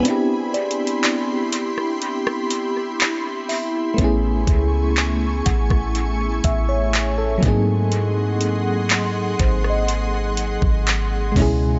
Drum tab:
HH |x-----x-x-x-x-----x-----x-----x-----x-----o-----|x-----x-----x-----x-----x-----x-----x-----x-----|x-----x-----x-----x-----x-----x-----x-----o-----|
CP |------------x-----------------------x-----------|------------x-----------------------x-----------|------------x-----------------------x-----------|
SD |---------------------r-----r--------------------|---------------------r--------------------------|---------------------r--------------------------|
BD |------------------------------------------------|o-----o-----------o--o--------o-----------o-----|------------------o--------------o--------o-----|